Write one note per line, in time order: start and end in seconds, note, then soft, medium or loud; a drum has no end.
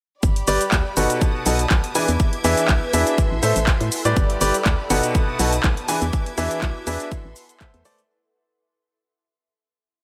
0.23 0.43 G1 loud
0.23 1.20 G4 medium
0.23 1.20 D5 medium
0.23 1.20 B5 medium
0.23 kick loud
0.23 shaker soft
0.36 closed hi-hat medium
0.47 0.58 G1 loud
0.47 0.61 G3 loud
0.47 0.61 G4 medium
0.47 0.61 B4 medium
0.47 0.61 D5 loud
0.47 open hi-hat loud
0.47 shaker medium
0.61 closed hi-hat medium
0.61 shaker soft
0.72 0.83 D2 medium
0.72 kick loud
0.72 clap loud
0.72 shaker soft
0.97 1.07 G1 loud
0.97 1.43 B2 medium
0.97 1.43 D#4 medium
0.97 1.43 F#4 medium
0.97 1.43 A4 medium
0.97 1.43 B4 medium
0.97 1.43 F#5 medium
0.97 open hi-hat loud
0.97 shaker medium
1.10 closed hi-hat medium
1.10 shaker soft
1.21 1.94 B4 medium
1.21 1.94 A5 medium
1.21 1.94 D#6 medium
1.21 kick loud
1.21 shaker soft
1.46 1.66 B1 medium
1.46 1.60 B2 medium
1.46 1.60 D#4 medium
1.46 1.60 F#4 medium
1.46 1.60 A4 medium
1.46 1.60 B4 medium
1.46 1.60 F#5 medium
1.46 open hi-hat loud
1.46 shaker medium
1.55 3.18 B4 medium
1.55 closed hi-hat medium
1.55 shaker soft
1.70 1.81 B1 loud
1.70 kick loud
1.70 clap loud
1.70 shaker soft
1.84 closed hi-hat medium
1.95 2.09 E3 medium
1.95 2.09 D4 medium
1.95 3.58 E4 loud
1.95 2.09 E4 medium
1.95 2.09 G#4 medium
1.95 2.09 B4 medium
1.95 4.14 E5 medium
1.95 2.09 G#5 medium
1.95 3.17 D6 medium
1.95 3.17 G#6 medium
1.95 open hi-hat loud
1.95 shaker medium
2.08 2.17 E2 loud
2.08 closed hi-hat medium
2.08 shaker soft
2.20 kick loud
2.20 shaker soft
2.33 closed hi-hat medium
2.44 2.55 E2 loud
2.44 2.65 E3 loud
2.44 2.65 D4 medium
2.44 2.65 E4 medium
2.44 2.65 G#4 medium
2.44 2.65 B4 medium
2.44 2.65 E5 loud
2.44 open hi-hat loud
2.44 shaker medium
2.57 closed hi-hat medium
2.57 shaker soft
2.68 2.79 B1 medium
2.68 kick loud
2.68 clap loud
2.68 shaker soft
2.93 3.04 E2 loud
2.93 3.14 D4 medium
2.93 3.14 E4 medium
2.93 3.14 G#4 medium
2.93 3.14 B4 medium
2.93 3.14 E5 loud
2.93 open hi-hat loud
2.93 shaker medium
3.07 closed hi-hat medium
3.07 shaker soft
3.18 4.16 A4 medium
3.18 4.15 C6 medium
3.18 kick loud
3.18 shaker soft
3.31 3.40 A1 medium
3.43 3.53 A2 medium
3.43 3.56 A3 medium
3.43 3.56 A4 medium
3.43 3.56 C5 medium
3.43 3.56 E5 loud
3.43 open hi-hat loud
3.43 shaker medium
3.56 3.75 A1 medium
3.56 closed hi-hat medium
3.56 shaker soft
3.67 kick loud
3.67 clap loud
3.67 shaker soft
3.81 3.90 A2 medium
3.81 closed hi-hat medium
3.92 open hi-hat loud
3.92 shaker medium
4.05 4.14 A2 medium
4.05 4.38 G3 medium
4.05 4.38 G4 medium
4.05 4.38 B4 medium
4.05 4.38 D5 loud
4.05 closed hi-hat medium
4.05 shaker soft
4.16 4.36 G1 medium
4.16 5.14 G4 medium
4.16 5.14 D5 medium
4.16 5.14 B5 medium
4.16 kick loud
4.16 shaker soft
4.30 closed hi-hat medium
4.41 4.51 G1 loud
4.41 4.55 G3 medium
4.41 4.55 G4 medium
4.41 4.55 B4 medium
4.41 4.55 D5 loud
4.41 open hi-hat loud
4.41 shaker medium
4.54 closed hi-hat medium
4.54 shaker soft
4.65 4.76 D2 loud
4.65 kick loud
4.65 clap loud
4.65 shaker soft
4.90 5.01 G1 loud
4.90 5.37 B2 medium
4.90 5.37 D#4 medium
4.90 5.37 F#4 medium
4.90 5.37 A4 medium
4.90 5.37 B4 medium
4.90 5.37 F#5 loud
4.90 open hi-hat loud
4.90 shaker medium
5.03 closed hi-hat medium
5.03 shaker soft
5.15 5.88 B4 medium
5.15 5.88 A5 medium
5.15 5.88 D#6 medium
5.15 kick loud
5.15 shaker soft
5.39 5.59 B1 medium
5.39 5.53 B2 medium
5.39 5.53 D#4 medium
5.39 5.53 F#4 medium
5.39 5.53 A4 medium
5.39 5.53 B4 medium
5.39 5.53 F#5 medium
5.39 open hi-hat loud
5.39 shaker medium
5.49 7.12 B4 loud
5.49 closed hi-hat medium
5.53 shaker soft
5.64 5.74 B1 medium
5.64 kick loud
5.64 clap loud
5.64 shaker soft
5.77 closed hi-hat medium
5.88 6.02 E3 medium
5.88 6.02 D4 medium
5.88 6.02 E4 medium
5.88 7.52 E4 medium
5.88 6.02 G#4 medium
5.88 6.02 B4 medium
5.88 8.08 E5 medium
5.88 6.02 G#5 medium
5.88 7.10 D6 medium
5.88 7.10 G#6 medium
5.88 open hi-hat loud
5.88 shaker medium
6.02 6.11 E2 loud
6.02 closed hi-hat medium
6.02 shaker soft
6.13 kick loud
6.13 shaker soft
6.26 closed hi-hat medium
6.38 6.48 E2 loud
6.38 6.58 E3 loud
6.38 6.58 D4 medium
6.38 6.58 E4 medium
6.38 6.58 G#4 medium
6.38 6.58 B4 medium
6.38 6.58 E5 loud
6.38 open hi-hat loud
6.38 shaker medium
6.51 closed hi-hat medium
6.51 shaker soft
6.62 6.73 B1 loud
6.62 kick loud
6.62 clap loud
6.62 shaker soft
6.87 6.97 E2 loud
6.87 7.07 D4 medium
6.87 7.07 E4 medium
6.87 7.07 G#4 medium
6.87 7.07 B4 medium
6.87 7.07 E5 loud
6.87 open hi-hat loud
6.87 shaker medium
7.00 closed hi-hat medium
7.00 shaker soft
7.11 8.09 A4 medium
7.11 8.09 C6 medium
7.11 kick loud
7.11 shaker soft
7.25 7.34 A1 medium
7.36 open hi-hat loud
7.36 shaker medium
7.49 closed hi-hat medium
7.49 shaker soft
7.60 7.81 A3 medium
7.60 7.81 A4 medium
7.60 7.81 C5 medium
7.60 7.81 E5 medium
7.60 kick loud
7.60 clap loud
7.60 shaker soft
7.74 7.83 E2 medium
7.74 closed hi-hat medium
7.85 7.99 A3 medium
7.85 7.99 A4 medium
7.85 7.99 C5 medium
7.85 7.99 D5 loud
7.85 open hi-hat loud
7.85 shaker medium
7.98 closed hi-hat medium
7.98 shaker soft